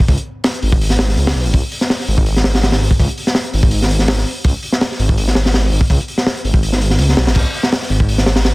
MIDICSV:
0, 0, Header, 1, 3, 480
1, 0, Start_track
1, 0, Tempo, 363636
1, 108, Time_signature, 4, 2, 24, 8
1, 11278, End_track
2, 0, Start_track
2, 0, Title_t, "Detuned saw bass"
2, 0, Program_c, 0, 39
2, 109, Note_on_c, 0, 37, 102
2, 224, Note_off_c, 0, 37, 0
2, 827, Note_on_c, 0, 32, 80
2, 1539, Note_off_c, 0, 32, 0
2, 1547, Note_on_c, 0, 37, 89
2, 1765, Note_off_c, 0, 37, 0
2, 1787, Note_on_c, 0, 35, 87
2, 1914, Note_on_c, 0, 32, 106
2, 1934, Note_off_c, 0, 35, 0
2, 2016, Note_off_c, 0, 32, 0
2, 2030, Note_on_c, 0, 37, 102
2, 2144, Note_off_c, 0, 37, 0
2, 2747, Note_on_c, 0, 32, 83
2, 3690, Note_off_c, 0, 32, 0
2, 3705, Note_on_c, 0, 32, 88
2, 3822, Note_off_c, 0, 32, 0
2, 3953, Note_on_c, 0, 37, 102
2, 4065, Note_off_c, 0, 37, 0
2, 4667, Note_on_c, 0, 32, 78
2, 5610, Note_off_c, 0, 32, 0
2, 5869, Note_on_c, 0, 37, 102
2, 5983, Note_off_c, 0, 37, 0
2, 6590, Note_on_c, 0, 32, 82
2, 7531, Note_off_c, 0, 32, 0
2, 7549, Note_on_c, 0, 32, 89
2, 7663, Note_off_c, 0, 32, 0
2, 7787, Note_on_c, 0, 37, 101
2, 7902, Note_off_c, 0, 37, 0
2, 8508, Note_on_c, 0, 32, 81
2, 9218, Note_off_c, 0, 32, 0
2, 9226, Note_on_c, 0, 37, 87
2, 9445, Note_off_c, 0, 37, 0
2, 9467, Note_on_c, 0, 35, 86
2, 9596, Note_on_c, 0, 32, 106
2, 9615, Note_off_c, 0, 35, 0
2, 9697, Note_off_c, 0, 32, 0
2, 9713, Note_on_c, 0, 37, 99
2, 9825, Note_off_c, 0, 37, 0
2, 10426, Note_on_c, 0, 32, 80
2, 11278, Note_off_c, 0, 32, 0
2, 11278, End_track
3, 0, Start_track
3, 0, Title_t, "Drums"
3, 109, Note_on_c, 9, 46, 85
3, 111, Note_on_c, 9, 36, 113
3, 229, Note_on_c, 9, 42, 46
3, 241, Note_off_c, 9, 46, 0
3, 243, Note_off_c, 9, 36, 0
3, 361, Note_off_c, 9, 42, 0
3, 578, Note_on_c, 9, 46, 98
3, 585, Note_on_c, 9, 38, 123
3, 710, Note_off_c, 9, 46, 0
3, 714, Note_on_c, 9, 42, 48
3, 717, Note_off_c, 9, 38, 0
3, 823, Note_on_c, 9, 46, 75
3, 846, Note_off_c, 9, 42, 0
3, 955, Note_off_c, 9, 46, 0
3, 956, Note_on_c, 9, 36, 93
3, 1075, Note_on_c, 9, 46, 97
3, 1088, Note_off_c, 9, 36, 0
3, 1187, Note_on_c, 9, 38, 50
3, 1207, Note_off_c, 9, 46, 0
3, 1305, Note_off_c, 9, 38, 0
3, 1305, Note_on_c, 9, 38, 114
3, 1316, Note_on_c, 9, 46, 67
3, 1436, Note_off_c, 9, 38, 0
3, 1436, Note_on_c, 9, 38, 34
3, 1448, Note_off_c, 9, 46, 0
3, 1547, Note_on_c, 9, 46, 60
3, 1568, Note_off_c, 9, 38, 0
3, 1675, Note_off_c, 9, 46, 0
3, 1675, Note_on_c, 9, 46, 77
3, 1679, Note_on_c, 9, 38, 113
3, 1779, Note_off_c, 9, 38, 0
3, 1779, Note_on_c, 9, 38, 35
3, 1807, Note_off_c, 9, 46, 0
3, 1911, Note_off_c, 9, 38, 0
3, 1918, Note_on_c, 9, 46, 65
3, 2022, Note_off_c, 9, 46, 0
3, 2022, Note_on_c, 9, 46, 85
3, 2031, Note_on_c, 9, 36, 114
3, 2154, Note_off_c, 9, 46, 0
3, 2163, Note_off_c, 9, 36, 0
3, 2265, Note_on_c, 9, 46, 71
3, 2392, Note_on_c, 9, 38, 54
3, 2397, Note_off_c, 9, 46, 0
3, 2509, Note_off_c, 9, 38, 0
3, 2509, Note_on_c, 9, 38, 115
3, 2516, Note_on_c, 9, 46, 85
3, 2637, Note_off_c, 9, 38, 0
3, 2637, Note_on_c, 9, 38, 37
3, 2648, Note_off_c, 9, 46, 0
3, 2747, Note_on_c, 9, 46, 70
3, 2769, Note_off_c, 9, 38, 0
3, 2874, Note_on_c, 9, 36, 102
3, 2879, Note_off_c, 9, 46, 0
3, 2984, Note_on_c, 9, 46, 89
3, 3006, Note_off_c, 9, 36, 0
3, 3116, Note_off_c, 9, 46, 0
3, 3123, Note_on_c, 9, 38, 56
3, 3223, Note_off_c, 9, 38, 0
3, 3223, Note_on_c, 9, 38, 113
3, 3232, Note_on_c, 9, 46, 68
3, 3355, Note_off_c, 9, 38, 0
3, 3356, Note_off_c, 9, 46, 0
3, 3356, Note_on_c, 9, 46, 80
3, 3361, Note_on_c, 9, 38, 99
3, 3461, Note_off_c, 9, 46, 0
3, 3461, Note_on_c, 9, 46, 71
3, 3475, Note_off_c, 9, 38, 0
3, 3475, Note_on_c, 9, 38, 102
3, 3592, Note_off_c, 9, 46, 0
3, 3592, Note_on_c, 9, 46, 79
3, 3593, Note_off_c, 9, 38, 0
3, 3593, Note_on_c, 9, 38, 110
3, 3707, Note_off_c, 9, 46, 0
3, 3707, Note_on_c, 9, 46, 71
3, 3725, Note_off_c, 9, 38, 0
3, 3838, Note_on_c, 9, 36, 104
3, 3839, Note_off_c, 9, 46, 0
3, 3953, Note_off_c, 9, 36, 0
3, 3953, Note_on_c, 9, 36, 104
3, 3959, Note_on_c, 9, 46, 86
3, 4074, Note_on_c, 9, 42, 43
3, 4085, Note_off_c, 9, 36, 0
3, 4091, Note_off_c, 9, 46, 0
3, 4191, Note_on_c, 9, 46, 64
3, 4206, Note_off_c, 9, 42, 0
3, 4316, Note_on_c, 9, 38, 56
3, 4323, Note_off_c, 9, 46, 0
3, 4419, Note_off_c, 9, 38, 0
3, 4419, Note_on_c, 9, 38, 108
3, 4424, Note_on_c, 9, 46, 92
3, 4551, Note_off_c, 9, 38, 0
3, 4552, Note_on_c, 9, 42, 41
3, 4556, Note_off_c, 9, 46, 0
3, 4665, Note_on_c, 9, 46, 79
3, 4684, Note_off_c, 9, 42, 0
3, 4791, Note_on_c, 9, 36, 105
3, 4797, Note_off_c, 9, 46, 0
3, 4897, Note_on_c, 9, 46, 98
3, 4923, Note_off_c, 9, 36, 0
3, 5029, Note_off_c, 9, 46, 0
3, 5048, Note_on_c, 9, 38, 49
3, 5155, Note_on_c, 9, 46, 65
3, 5180, Note_off_c, 9, 38, 0
3, 5269, Note_on_c, 9, 38, 39
3, 5287, Note_off_c, 9, 46, 0
3, 5384, Note_on_c, 9, 46, 93
3, 5390, Note_off_c, 9, 38, 0
3, 5390, Note_on_c, 9, 38, 118
3, 5516, Note_off_c, 9, 38, 0
3, 5516, Note_off_c, 9, 46, 0
3, 5516, Note_on_c, 9, 38, 43
3, 5631, Note_on_c, 9, 46, 64
3, 5648, Note_off_c, 9, 38, 0
3, 5763, Note_off_c, 9, 46, 0
3, 5866, Note_on_c, 9, 46, 93
3, 5870, Note_on_c, 9, 36, 117
3, 5998, Note_off_c, 9, 46, 0
3, 6002, Note_off_c, 9, 36, 0
3, 6106, Note_on_c, 9, 46, 69
3, 6236, Note_on_c, 9, 38, 63
3, 6238, Note_off_c, 9, 46, 0
3, 6344, Note_on_c, 9, 46, 76
3, 6354, Note_off_c, 9, 38, 0
3, 6354, Note_on_c, 9, 38, 123
3, 6476, Note_off_c, 9, 46, 0
3, 6486, Note_off_c, 9, 38, 0
3, 6489, Note_on_c, 9, 38, 44
3, 6592, Note_on_c, 9, 46, 68
3, 6621, Note_off_c, 9, 38, 0
3, 6721, Note_on_c, 9, 36, 100
3, 6724, Note_off_c, 9, 46, 0
3, 6831, Note_on_c, 9, 46, 94
3, 6853, Note_off_c, 9, 36, 0
3, 6963, Note_off_c, 9, 46, 0
3, 6965, Note_on_c, 9, 38, 46
3, 7065, Note_off_c, 9, 38, 0
3, 7065, Note_on_c, 9, 38, 109
3, 7070, Note_on_c, 9, 46, 82
3, 7197, Note_off_c, 9, 38, 0
3, 7199, Note_off_c, 9, 46, 0
3, 7199, Note_on_c, 9, 46, 76
3, 7204, Note_on_c, 9, 38, 100
3, 7313, Note_off_c, 9, 38, 0
3, 7313, Note_on_c, 9, 38, 98
3, 7316, Note_off_c, 9, 46, 0
3, 7316, Note_on_c, 9, 46, 74
3, 7445, Note_off_c, 9, 38, 0
3, 7448, Note_off_c, 9, 46, 0
3, 7550, Note_on_c, 9, 46, 76
3, 7667, Note_on_c, 9, 36, 95
3, 7682, Note_off_c, 9, 46, 0
3, 7787, Note_off_c, 9, 36, 0
3, 7787, Note_on_c, 9, 36, 113
3, 7790, Note_on_c, 9, 46, 82
3, 7919, Note_off_c, 9, 36, 0
3, 7922, Note_off_c, 9, 46, 0
3, 7924, Note_on_c, 9, 42, 44
3, 8028, Note_on_c, 9, 46, 64
3, 8056, Note_off_c, 9, 42, 0
3, 8154, Note_on_c, 9, 38, 54
3, 8160, Note_off_c, 9, 46, 0
3, 8270, Note_off_c, 9, 38, 0
3, 8270, Note_on_c, 9, 38, 127
3, 8281, Note_on_c, 9, 46, 83
3, 8402, Note_off_c, 9, 38, 0
3, 8408, Note_on_c, 9, 42, 45
3, 8413, Note_off_c, 9, 46, 0
3, 8510, Note_on_c, 9, 46, 75
3, 8540, Note_off_c, 9, 42, 0
3, 8631, Note_on_c, 9, 36, 100
3, 8642, Note_off_c, 9, 46, 0
3, 8751, Note_on_c, 9, 46, 96
3, 8763, Note_off_c, 9, 36, 0
3, 8876, Note_on_c, 9, 38, 45
3, 8883, Note_off_c, 9, 46, 0
3, 8993, Note_on_c, 9, 46, 68
3, 9008, Note_off_c, 9, 38, 0
3, 9111, Note_on_c, 9, 38, 38
3, 9125, Note_off_c, 9, 46, 0
3, 9220, Note_on_c, 9, 46, 80
3, 9243, Note_off_c, 9, 38, 0
3, 9352, Note_off_c, 9, 46, 0
3, 9360, Note_on_c, 9, 38, 40
3, 9464, Note_on_c, 9, 46, 73
3, 9465, Note_off_c, 9, 38, 0
3, 9465, Note_on_c, 9, 38, 114
3, 9594, Note_off_c, 9, 46, 0
3, 9594, Note_on_c, 9, 46, 74
3, 9597, Note_off_c, 9, 38, 0
3, 9599, Note_on_c, 9, 38, 113
3, 9699, Note_on_c, 9, 49, 96
3, 9713, Note_off_c, 9, 46, 0
3, 9713, Note_on_c, 9, 36, 117
3, 9713, Note_on_c, 9, 46, 83
3, 9731, Note_off_c, 9, 38, 0
3, 9831, Note_off_c, 9, 49, 0
3, 9845, Note_off_c, 9, 36, 0
3, 9845, Note_off_c, 9, 46, 0
3, 9952, Note_on_c, 9, 46, 67
3, 10075, Note_on_c, 9, 38, 58
3, 10084, Note_off_c, 9, 46, 0
3, 10188, Note_on_c, 9, 46, 89
3, 10197, Note_off_c, 9, 38, 0
3, 10197, Note_on_c, 9, 38, 123
3, 10320, Note_off_c, 9, 46, 0
3, 10323, Note_off_c, 9, 38, 0
3, 10323, Note_on_c, 9, 38, 37
3, 10427, Note_on_c, 9, 46, 72
3, 10455, Note_off_c, 9, 38, 0
3, 10559, Note_off_c, 9, 46, 0
3, 10561, Note_on_c, 9, 36, 95
3, 10673, Note_on_c, 9, 46, 89
3, 10693, Note_off_c, 9, 36, 0
3, 10799, Note_on_c, 9, 38, 55
3, 10805, Note_off_c, 9, 46, 0
3, 10908, Note_off_c, 9, 38, 0
3, 10908, Note_on_c, 9, 38, 108
3, 10913, Note_on_c, 9, 46, 80
3, 11030, Note_off_c, 9, 38, 0
3, 11030, Note_on_c, 9, 38, 108
3, 11033, Note_off_c, 9, 46, 0
3, 11033, Note_on_c, 9, 46, 72
3, 11141, Note_off_c, 9, 46, 0
3, 11141, Note_on_c, 9, 46, 75
3, 11151, Note_off_c, 9, 38, 0
3, 11151, Note_on_c, 9, 38, 117
3, 11273, Note_off_c, 9, 46, 0
3, 11278, Note_off_c, 9, 38, 0
3, 11278, End_track
0, 0, End_of_file